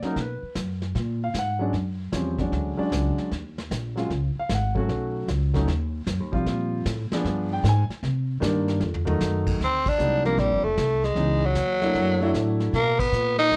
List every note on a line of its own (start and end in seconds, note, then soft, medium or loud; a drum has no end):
0.02 0.15 F#3 medium
0.02 0.15 A#3 medium
0.02 0.16 C#4 medium
0.02 0.16 D#4 medium
0.02 muted upright bass stroke soft
0.02 snare soft
0.07 0.18 A#4 medium
0.16 0.40 B2 medium
0.16 brush sweep soft
0.16 kick soft
0.16 snare soft
0.21 0.55 B4 medium
0.42 muted upright bass stroke soft
0.55 0.94 F#2 medium
0.55 kick soft
0.55 snare medium
0.55 hi-hat pedal medium
0.82 snare soft
0.95 1.33 A#2 medium
0.95 brush sweep medium
0.95 kick soft
0.95 snare soft
1.24 1.35 F5 medium
1.34 1.72 G#2 medium
1.34 kick soft
1.34 snare medium
1.34 hi-hat pedal medium
1.39 1.62 F#5 medium
1.59 1.72 F#3 medium
1.59 1.72 G#3 medium
1.59 1.72 C#4 medium
1.59 1.73 D4 medium
1.73 2.11 F#2 medium
1.73 brush sweep soft
1.73 kick soft
1.73 snare soft
2.12 2.51 E2 medium
2.12 2.36 F3 medium
2.12 2.36 G3 medium
2.12 2.37 C4 medium
2.12 2.37 C#4 medium
2.12 kick soft
2.12 snare medium
2.12 hi-hat pedal medium
2.39 2.73 F#3 medium
2.39 2.73 G#3 medium
2.39 2.74 C#4 medium
2.39 2.74 D4 medium
2.39 kick medium
2.39 snare soft
2.52 2.77 D2 medium
2.52 brush sweep soft
2.52 kick soft
2.52 snare soft
2.77 3.28 F#3 medium
2.77 3.28 G#3 medium
2.77 3.28 C#4 medium
2.77 3.29 D4 medium
2.77 muted upright bass stroke soft
2.92 3.16 C#2 medium
2.92 kick soft
2.92 snare medium
2.92 hi-hat pedal medium
3.17 muted upright bass stroke soft
3.17 snare soft
3.31 3.69 D#2 medium
3.31 brush sweep soft
3.31 kick soft
3.31 snare soft
3.58 snare soft
3.71 4.09 A#1 medium
3.71 kick soft
3.71 snare medium
3.71 hi-hat pedal medium
3.96 4.08 F#3 medium
3.96 4.09 G#3 medium
3.96 4.09 C#4 medium
3.96 4.09 F4 medium
3.96 snare soft
4.10 4.34 C#2 medium
4.10 brush sweep soft
4.10 kick soft
4.10 snare soft
4.35 muted upright bass stroke soft
4.39 4.51 F5 medium
4.49 4.88 G#1 medium
4.49 kick soft
4.49 snare medium
4.49 hi-hat pedal medium
4.54 4.77 F#5 medium
4.75 5.25 F#3 medium
4.75 5.26 A3 medium
4.75 5.26 C#4 medium
4.75 5.26 F#4 medium
4.75 kick medium
4.89 5.27 B1 medium
4.89 brush sweep soft
4.89 kick soft
4.89 snare soft
5.28 5.66 C#2 medium
5.28 kick soft
5.28 snare medium
5.28 hi-hat pedal medium
5.54 5.66 F#3 medium
5.54 5.66 A3 medium
5.54 5.67 C#4 medium
5.54 5.67 D#4 medium
5.54 kick medium
5.54 snare soft
5.68 6.06 D#2 medium
5.68 brush sweep soft
5.68 kick soft
5.68 snare soft
6.07 6.20 F#2 loud
6.07 kick soft
6.07 snare medium
6.07 hi-hat pedal medium
6.20 6.32 D#2 medium
6.32 6.45 B1 medium
6.32 6.82 F3 medium
6.32 6.82 G3 medium
6.32 6.83 C4 medium
6.32 6.83 F4 medium
6.32 kick medium
6.46 6.84 A#2 medium
6.46 brush sweep medium
6.46 kick soft
6.46 snare soft
6.85 7.09 A2 medium
6.85 kick soft
6.85 snare medium
6.85 hi-hat pedal medium
7.11 7.62 F3 medium
7.11 7.62 B3 medium
7.11 7.62 D4 medium
7.11 7.62 G#4 medium
7.11 muted upright bass stroke soft
7.11 snare medium
7.24 7.62 G2 medium
7.24 brush sweep soft
7.24 kick soft
7.24 snare soft
7.53 7.65 G5 medium
7.63 7.88 G#2 loud
7.63 kick soft
7.63 snare medium
7.63 hi-hat pedal medium
7.69 7.83 G#5 medium
7.89 muted upright bass stroke soft
7.89 snare soft
8.03 8.41 C3 medium
8.03 brush sweep medium
8.03 kick soft
8.03 snare soft
8.40 8.80 G2 loud
8.40 8.80 D#3 medium
8.40 8.80 G3 medium
8.40 8.81 A#3 medium
8.40 8.81 D4 medium
8.40 kick soft
8.40 snare medium
8.40 hi-hat pedal medium
8.68 snare soft
8.81 9.19 F2 medium
8.81 snare medium
8.94 floor tom medium
9.05 9.56 D#3 medium
9.05 9.56 F#3 medium
9.05 9.57 A3 medium
9.05 9.57 D#4 loud
9.05 floor tom medium
9.21 9.59 F#2 loud
9.21 snare medium
9.21 hi-hat pedal medium
9.46 kick medium
9.46 crash medium
9.60 9.98 D2 medium
9.60 brush sweep soft
9.60 kick soft
9.60 snare soft
9.64 9.90 C4 medium
9.86 10.26 D4 medium
9.86 kick medium
9.86 crash medium
9.98 10.37 C2 medium
9.98 10.22 F#3 medium
9.98 10.23 G#3 medium
9.98 10.23 B3 medium
9.98 10.23 C#4 medium
9.98 10.23 D#4 medium
9.98 hi-hat pedal medium
10.24 10.59 F3 medium
10.24 10.59 G3 medium
10.24 10.59 A#3 medium
10.24 10.41 A#3 medium
10.24 10.59 C4 medium
10.24 10.59 D4 medium
10.24 snare soft
10.38 10.51 A#1 medium
10.38 10.66 G3 medium
10.38 brush sweep soft
10.38 kick soft
10.38 snare soft
10.51 10.63 G1 medium
10.64 10.76 F1 medium
10.64 11.06 A3 medium
10.77 11.15 C2 medium
10.77 kick soft
10.77 snare medium
10.77 hi-hat pedal medium
11.04 11.47 G#3 medium
11.04 snare soft
11.15 11.54 C#2 medium
11.15 11.39 E3 medium
11.15 11.39 G#3 medium
11.15 11.40 B3 medium
11.15 11.40 C#4 medium
11.15 11.40 D#4 medium
11.15 brush sweep medium
11.15 kick soft
11.15 snare soft
11.46 12.62 F#3 loud
11.55 11.94 D#2 medium
11.55 kick soft
11.55 snare medium
11.55 hi-hat pedal medium
11.81 12.18 F#3 medium
11.81 12.18 A3 medium
11.81 12.18 A#3 medium
11.81 12.19 D4 medium
11.81 12.19 E4 medium
11.81 snare soft
11.94 12.33 F#2 medium
11.94 brush sweep soft
11.94 kick soft
11.94 snare soft
12.20 12.71 F#3 medium
12.20 12.71 A3 medium
12.20 12.71 D4 medium
12.20 12.72 E4 medium
12.34 12.72 A2 medium
12.34 kick soft
12.34 snare medium
12.34 hi-hat pedal medium
12.60 snare soft
12.73 13.11 B2 medium
12.73 13.01 A#3 loud
12.73 brush sweep medium
12.73 kick soft
12.73 snare soft
12.99 13.38 B3 loud
12.99 kick medium
12.99 crash medium
13.12 13.51 A#2 medium
13.12 hi-hat pedal medium
13.38 13.56 D#4 loud
13.38 snare soft
13.51 13.56 F#2 medium
13.51 brush sweep medium
13.51 kick soft
13.51 snare soft